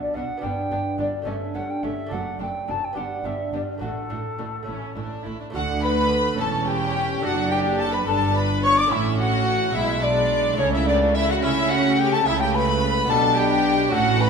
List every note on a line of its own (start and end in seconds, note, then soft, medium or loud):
0.00 0.13 B2 soft
0.00 0.36 B3 soft
0.00 0.37 D4 soft
0.00 0.38 F#4 soft
0.00 0.16 D5 medium
0.14 0.24 B1 medium
0.14 0.40 B2 soft
0.14 0.23 B2 medium
0.14 0.24 B3 soft
0.14 0.25 D4 soft
0.14 0.23 F#4 medium
0.14 0.45 F#5 medium
0.37 1.21 B3 soft
0.37 1.22 D4 soft
0.37 1.23 G4 soft
0.42 0.51 G1 medium
0.42 0.68 G2 soft
0.42 0.51 G2 medium
0.42 0.52 B3 medium
0.42 0.51 D4 medium
0.42 0.52 G4 soft
0.42 0.99 G5 medium
0.70 0.79 G1 medium
0.70 0.78 G2 medium
0.70 0.96 G2 soft
0.70 0.79 B3 soft
0.70 0.80 D4 medium
0.70 0.79 G4 medium
0.98 1.07 G1 medium
0.98 1.24 G2 medium
0.98 1.07 G2 medium
0.98 1.07 B3 soft
0.98 1.08 D4 soft
0.98 1.07 G4 medium
0.98 1.29 D5 medium
1.22 2.05 A3 soft
1.22 1.34 A3 medium
1.22 2.06 C#4 soft
1.22 2.08 A4 soft
1.26 1.35 G1 medium
1.26 1.34 G2 medium
1.26 1.52 G2 soft
1.26 1.35 C#4 medium
1.26 1.35 A4 medium
1.26 1.56 E5 medium
1.54 1.63 G1 soft
1.54 1.63 G2 medium
1.54 1.81 G2 soft
1.54 1.62 A3 medium
1.54 1.63 C#4 soft
1.54 1.63 A4 medium
1.54 1.72 F#5 medium
1.70 1.85 G5 medium
1.83 1.91 G1 soft
1.83 2.09 G2 soft
1.83 1.91 G2 medium
1.83 1.92 A3 soft
1.83 1.92 C#4 medium
1.83 1.91 A4 medium
1.83 2.14 E5 medium
2.06 2.91 A3 soft
2.06 2.92 D4 soft
2.06 2.93 A4 soft
2.11 2.20 F#1 medium
2.11 2.37 F#2 soft
2.11 2.20 F#2 medium
2.11 2.20 A3 medium
2.11 2.20 D4 medium
2.11 2.20 A4 medium
2.11 2.40 F#5 medium
2.39 2.48 F#1 medium
2.39 2.65 F#2 soft
2.39 2.48 F#2 medium
2.39 2.48 A3 soft
2.39 2.48 D4 medium
2.39 2.49 A4 medium
2.39 2.72 G5 medium
2.68 2.77 F#1 medium
2.68 2.76 F#2 medium
2.68 2.94 F#2 soft
2.68 2.76 A3 soft
2.68 2.77 D4 soft
2.68 2.77 A4 soft
2.68 2.86 A5 medium
2.84 2.99 G5 medium
2.93 3.05 G1 medium
2.93 3.04 G2 medium
2.93 3.77 B3 soft
2.93 3.04 B3 medium
2.93 3.78 D4 soft
2.93 3.04 D4 medium
2.93 3.79 G4 soft
2.97 3.22 G2 soft
2.97 3.05 G4 medium
2.97 3.27 F#5 medium
3.24 3.32 G1 medium
3.24 3.33 G2 medium
3.24 3.51 G2 soft
3.24 3.33 B3 soft
3.24 3.32 D4 soft
3.24 3.33 G4 soft
3.24 3.54 E5 medium
3.53 3.61 G1 soft
3.53 3.79 G2 soft
3.53 3.62 G2 medium
3.53 3.61 B3 soft
3.53 3.61 D4 medium
3.53 3.63 G4 medium
3.53 3.61 D5 medium
3.78 3.90 A1 medium
3.78 4.62 A3 soft
3.78 3.89 D4 medium
3.78 4.65 F#4 soft
3.82 3.91 A2 medium
3.82 4.08 A2 soft
3.82 3.90 A3 medium
3.82 3.91 F#4 medium
3.82 5.23 A4 medium
4.09 4.19 A1 soft
4.09 4.36 A2 soft
4.09 4.19 A2 medium
4.09 4.17 A3 soft
4.09 4.18 D4 soft
4.09 4.19 F#4 medium
4.39 4.48 A1 medium
4.39 4.65 A2 medium
4.39 4.47 A2 medium
4.39 4.47 A3 soft
4.39 4.47 D4 soft
4.39 4.47 F#4 soft
4.63 5.49 A3 soft
4.63 5.50 C#4 soft
4.63 5.51 E4 soft
4.67 4.76 A1 medium
4.67 4.94 A2 soft
4.67 4.76 A2 medium
4.67 4.75 A3 soft
4.67 4.95 C#4 medium
4.67 4.76 E4 medium
4.95 5.05 A1 medium
4.95 5.04 A2 medium
4.95 5.23 A2 soft
4.95 5.05 A3 soft
4.95 5.25 D4 medium
4.95 5.03 E4 soft
5.24 5.34 A1 soft
5.24 5.34 A2 medium
5.24 5.52 A2 soft
5.24 5.34 A3 medium
5.24 5.32 E4 soft
5.24 5.40 E4 medium
5.40 5.46 D4 medium
5.50 6.35 D2 medium
5.50 6.35 D3 medium
5.50 6.33 A3 medium
5.50 6.35 A3 medium
5.50 6.36 F#4 medium
5.50 5.81 F#5 loud
5.54 6.35 D3 medium
5.54 5.63 F#4 medium
5.54 5.81 F#5 medium
5.82 6.38 B4 loud
5.82 6.39 B5 loud
5.82 6.38 B5 loud
6.34 7.18 A3 medium
6.34 7.18 C#4 medium
6.34 7.20 A4 medium
6.38 7.23 E1 medium
6.38 7.19 E2 medium
6.38 7.23 E2 medium
6.38 7.24 C#4 medium
6.38 6.67 A4 medium
6.38 6.67 A5 loud
6.38 6.69 A5 medium
6.66 7.22 G4 medium
6.66 7.23 G5 loud
6.66 7.22 G5 medium
7.19 8.05 F#2 medium
7.19 8.03 A3 medium
7.19 8.86 D4 medium
7.19 8.87 A4 medium
7.23 8.06 F#1 loud
7.23 8.03 F#2 medium
7.23 8.07 D4 medium
7.23 7.52 F#4 medium
7.23 7.53 F#5 loud
7.23 7.51 F#5 loud
7.50 7.80 G4 medium
7.50 7.58 G5 loud
7.50 7.81 G5 loud
7.79 7.93 A4 loud
7.79 7.93 A5 loud
7.79 7.95 A5 medium
7.93 8.08 B4 medium
7.93 8.07 B5 loud
7.93 8.06 B5 medium
8.07 8.90 G1 medium
8.07 8.89 G2 loud
8.07 8.88 G2 medium
8.07 8.90 D4 medium
8.07 8.36 A4 medium
8.07 8.34 A5 loud
8.07 8.35 A5 loud
8.35 8.63 B4 medium
8.35 8.41 B5 loud
8.35 8.64 B5 loud
8.63 8.78 C#5 loud
8.63 8.79 C#6 loud
8.63 8.77 C#6 loud
8.78 8.92 D5 medium
8.78 8.93 D6 loud
8.78 8.92 D6 loud
8.87 9.70 A3 medium
8.87 9.71 C#4 medium
8.87 9.71 E4 medium
8.87 9.18 E5 loud
8.91 9.73 A1 medium
8.91 9.71 A2 medium
8.91 9.73 A2 medium
8.91 9.74 C#4 medium
8.91 9.19 E4 medium
8.91 9.18 E5 loud
9.19 9.74 F#4 loud
9.19 9.77 F#5 loud
9.19 9.74 F#5 loud
9.70 10.54 G#3 medium
9.70 10.54 E4 medium
9.74 10.57 B1 medium
9.74 10.57 B2 medium
9.74 10.55 B2 medium
9.74 10.57 G#3 medium
9.74 10.03 E4 loud
9.74 10.03 E5 loud
9.74 10.04 E5 medium
10.03 10.58 D4 loud
10.03 10.57 D5 medium
10.03 10.59 D5 loud
10.54 12.20 A3 medium
10.54 12.21 E4 medium
10.58 11.41 C#2 loud
10.58 11.38 C#3 medium
10.58 11.41 C#3 loud
10.58 11.41 A3 medium
10.58 10.74 C#4 loud
10.58 10.72 C#5 loud
10.72 10.88 E4 medium
10.72 10.88 E5 medium
10.72 10.87 E5 loud
10.86 11.16 D4 medium
10.86 11.16 D5 medium
10.86 10.96 D5 loud
11.14 11.29 E4 loud
11.14 11.32 E5 medium
11.14 11.28 E5 loud
11.31 11.44 F#4 loud
11.31 11.36 F#5 loud
11.31 11.43 F#5 medium
11.42 12.24 C#3 medium
11.42 12.25 A3 medium
11.42 12.24 C#4 loud
11.42 12.22 C#4 medium
11.42 11.72 E4 loud
11.42 11.70 E5 loud
11.42 11.72 E5 medium
11.70 11.99 F#4 loud
11.70 11.98 F#5 loud
11.70 12.00 F#5 loud
11.98 12.13 G4 loud
11.98 12.14 G5 loud
11.98 12.12 G5 loud
12.12 12.28 A4 loud
12.12 12.27 A5 loud
12.21 13.05 A3 medium
12.21 13.06 E4 medium
12.25 13.09 C#2 loud
12.25 13.06 C#3 medium
12.25 13.08 C#3 loud
12.25 13.09 A3 loud
12.25 12.41 E4 loud
12.25 12.41 E5 loud
12.25 12.40 E5 loud
12.40 12.55 G4 loud
12.40 12.56 G5 loud
12.40 12.55 G5 loud
12.54 13.11 B4 loud
12.54 13.09 B5 loud
12.54 12.84 B5 loud
13.05 13.88 B3 medium
13.05 13.90 D4 medium
13.05 13.90 G4 medium
13.05 13.39 A5 medium
13.09 13.93 B1 medium
13.09 13.92 B2 loud
13.09 13.90 B2 medium
13.09 13.94 D4 medium
13.09 13.38 A4 loud
13.09 13.38 A5 loud
13.37 13.94 G4 loud
13.37 13.93 G5 loud
13.37 13.95 G5 loud
13.89 14.30 C#4 medium
13.89 14.30 F#4 medium
13.89 14.21 F#4 loud
13.89 14.30 A4 medium
13.93 14.30 A1 loud
13.93 14.30 A2 loud
13.93 14.30 A2 medium
13.93 14.30 C#4 medium
13.93 14.22 F#5 loud
14.21 14.30 B4 loud
14.21 14.30 B5 loud